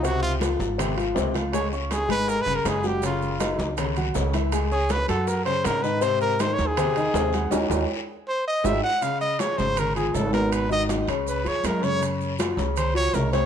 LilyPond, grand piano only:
\new Staff \with { instrumentName = "Grand piano" } { \time 4/4 \key des \lydian \tempo 4 = 160 <c c' c''>4 <f f'>4 <c c' c''>8 <f f' f''>8 <c c' c''>8 <f f' f''>8 | <aes aes' aes''>8 <des' des'' des'''>4 <aes aes' aes''>4 <des des' des''>4 <ges ges' ges''>8 | <des des' des''>4 <ges ees' ees''>4 <des des' des''>8 <ges ges' ges''>8 <des des' des''>8 <fes fes' fes''>8 | <aes aes' aes''>8 <des' des'' des'''>4 <ges ges' ges''>4 <des des' des''>4 <ees ees' ees''>8 |
<c c' c''>4 <ees ees' ees''>4 <c c' c''>8 <ees ees' ees''>8 <c c' c''>8 <ges ges' ges''>8 | <des' ees' ges'>8 <des' ees' ges'>8 r2 <ees' ges' aes'>8 r8 | \key des \major <des des' des''>4 <f f' aes'>8 <des des' des''>4 <f f' aes'>8 <des des' des''>8 <ces ces' ces''>8~ | <ces ces' ces''>8 <ees ees' ges'>8 <ees ees' ges'>8 <des des' des''>4 <f f' aes'>4 <des des' des''>8 |
<des des' des''>4 <f f' ges'>8 <des des' des''>4 <f f' ges'>8 <des des' des''>8 <c c' c''>8 | }